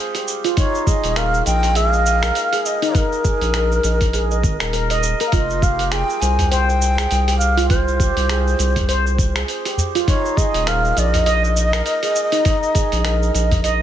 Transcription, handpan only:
0.15 G4
0.44 F4
0.58 D#4
0.87 G#4
1.16 A#4
1.46 D#5
1.76 G#4
1.93 D#5
2.23 A#4
2.53 G#4
2.82 D#4
2.95 D#4
3.25 G#4
3.55 A#4
3.84 D#5
4.14 G#4
4.31 D#5
4.61 A#4
4.73 A#4
4.91 D#5
5.21 A#4
5.33 F4
5.62 G4
5.92 G#4
6.22 C5
6.52 C5
6.69 C5
6.98 G#4
7.28 G4
7.57 F4
7.70 F4
8.00 G4
8.30 G#4
8.59 C5
8.89 C5
9.06 C5
9.36 G#4
9.66 G4
9.95 F4
10.08 D#4
10.37 G#4
10.67 A#4
10.97 D#5
11.26 D#5
11.43 D#5
11.73 A#4
12.03 G#4
12.32 D#4
12.45 D#4
12.75 G#4
13.05 A#4
13.34 D#5
13.64 D#5

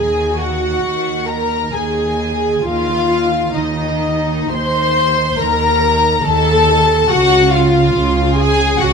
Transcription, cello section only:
Already playing: D#3
0.83 D#3
1.73 D#3
2.62 D#3
3.53 D#3
4.49 D#3
5.39 D#3
6.23 D#3
7.09 C#3
7.95 C#3
8.80 C#3

